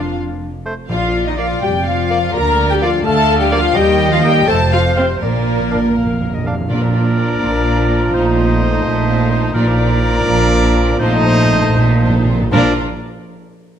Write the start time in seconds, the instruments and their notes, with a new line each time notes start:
Already playing: double bass section F1, timpani F2, cello section F2, french horn section F3, clarinet D4, viola section F4, violin section F5, flute section F5
0.65 bassoon A3, oboe C5
0.89 double bass section A#1, timpani A#2, cello section A#2, french horn section F3, viola section F4, clarinet D5, violin section F5, flute section F5
1.25 french horn section D#3, viola section D#4, flute section D#5, violin section D#5
1.38 french horn section F3, bassoon A#3, viola section F4, oboe D5, flute section F5, violin section F5
1.61 double bass section F1, cello section F2, french horn section G3, viola section G4, flute section G5, violin section G5
1.85 french horn section F3, viola section F4, flute section F5, violin section F5
2.10 bassoon A#3, oboe D5
2.33 double bass section D2, cello section D3, french horn section A#3, viola section A#4, clarinet D5, flute section A#5, violin section A#5
2.69 french horn section G3, viola section G4, flute section G5, violin section G5
2.80 french horn section F3, bassoon A#3, viola section F4, oboe D5, violin section F5, flute section F5
3.03 double bass section D2, cello section D3, french horn section A3, viola section A4, clarinet F5, violin section A5, flute section A5
3.39 french horn section G3, viola section G4, violin section G5, flute section G5
3.51 french horn section F3, bassoon A#3, viola section F4, oboe D5, violin section F5, flute section F5
3.75 double bass section D#2, cello section D#3, french horn section G3, viola section G4, clarinet D#5, violin section G5, flute section G5
4.10 french horn section F3, viola section F4, violin section F5, flute section F5
4.22 french horn section G3, bassoon A#3, viola section G4, oboe D#5, violin section G5, flute section G5
4.47 double bass section F1, cello section F2, french horn section A3, viola section A4, clarinet C5, violin section A5, flute section A5
4.72 french horn section F3, viola section F4, violin section F5, flute section F5
4.95 french horn section C3, bassoon C4, viola section C4, violin section C5, oboe F5
5.00 flute section C5
5.21 double bass section A#1, cello section A#2, french horn section A#2, timpani A#2, viola section A#3, violin section A#4, flute section A#4, clarinet D5
5.30 timpani A#2
5.38 timpani A#2
5.44 timpani A#2
5.53 timpani A#2
5.60 timpani A#2
5.67 timpani A#2, oboe F5
5.72 timpani A#2, bassoon D4
5.82 timpani A#2
5.90 timpani A#2
5.95 double bass section F1, cello section F2, timpani A#2, clarinet F5
6.06 timpani A#2
6.13 timpani A#2
6.21 timpani A#2
6.29 timpani A#2
6.34 timpani A#2, clarinet D#5
6.44 timpani A#2, bassoon D4, oboe F5, clarinet F5
6.52 timpani A#2
6.60 timpani A#2
6.69 double bass section A#1, cello section A#2, timpani A#2, bassoon F3, french horn section A#3 F4, viola section A#3, clarinet D4, violin section F4 D5, oboe A#4, trumpet D5, flute section A#5
6.81 violin section D4 A#4, viola section D4
6.94 viola section A#3, violin section F4 D5
7.05 viola section D4, violin section D4 A#4
7.16 viola section A#3, violin section F4 D5
7.29 violin section D4 A#4, viola section D4
7.41 double bass section A#1, cello section A#2, viola section A#3, violin section F4 D5
7.53 violin section D4 A#4, viola section D4
7.65 viola section A#3, violin section F4 D5
7.77 violin section D4 A#4, viola section D4
7.89 viola section A#3, violin section F4 D5
8.01 violin section D4 A#4, viola section D4
8.12 double bass section A#1, cello section A#2, french horn section A3, viola section C4, clarinet D#4, violin section F4 C5, oboe C5, trumpet D#5
8.24 violin section D#4 A4, viola section D#4
8.36 viola section C4, violin section F4 C5
8.48 violin section D#4 A4, viola section D#4
8.60 viola section C4, violin section F4 C5
8.71 viola section D#4, violin section D#4 A4
8.83 double bass section A#1, cello section A#2, viola section C4, violin section F4 C5, flute section A5
8.94 viola section D#4, violin section D#4 A4
9.07 viola section C4, violin section F4 C5
9.19 viola section D#4, violin section D#4 A4
9.30 viola section C4, violin section F4 C5
9.41 viola section D#4, violin section D#4 A4
9.53 double bass section A#1, cello section A#2, timpani A#2, bassoon F3, viola section A#3, french horn section A#3 F4, violin section F4 D5, oboe A#4, trumpet D5, flute section A#5
9.65 viola section D4, violin section D4 A#4
9.78 viola section A#3, violin section F4 D5
9.90 viola section D4, violin section D4 A#4
10.01 viola section A#3, violin section F4 D5
10.13 viola section D4, violin section D4 A#4
10.26 double bass section A#1, cello section A#2, viola section A#3, clarinet D4, violin section F4 D5
10.38 viola section D4, violin section D4 A#4
10.50 viola section A#3, violin section F4 D5
10.62 viola section D4, violin section D4 A#4
10.75 viola section A#3, violin section F4 D5
10.87 viola section D4, violin section D4 A#4
10.99 double bass section A#1, cello section A#2, timpani A#2, french horn section A3, viola section C4, clarinet D#4, violin section F4 C5, oboe C5, trumpet D#5, flute section A5
11.07 timpani A#2
11.12 timpani A#2, viola section D#4, violin section D#4 A4
11.23 timpani A#2, viola section C4, violin section F4 C5
11.30 timpani A#2
11.37 timpani A#2, violin section D#4 A4, viola section D#4
11.45 timpani A#2, violin section C5
11.51 timpani A#2, viola section C4, violin section F4
11.62 timpani A#2, violin section D#4 A4, viola section D#4
11.69 timpani A#2
11.74 double bass section A#1, cello section A#2, timpani A#2, viola section C4, violin section F4 C5
11.86 timpani A#2, viola section D#4, violin section D#4 A4
11.93 timpani A#2
12.01 timpani A#2, viola section C4, violin section F4 C5
12.09 timpani A#2
12.14 timpani A#2, violin section D#4 A4, viola section D#4
12.25 timpani A#2, viola section C4, violin section F4 C5
12.34 timpani A#2
12.39 timpani A#2, violin section D#4 A4, viola section D#4
12.51 double bass section A#1, timpani A#2, cello section A#2, bassoon F3, french horn section A#3 F4, clarinet D4, viola section D4, violin section F4 A#4, oboe A#4, trumpet D5, flute section A#5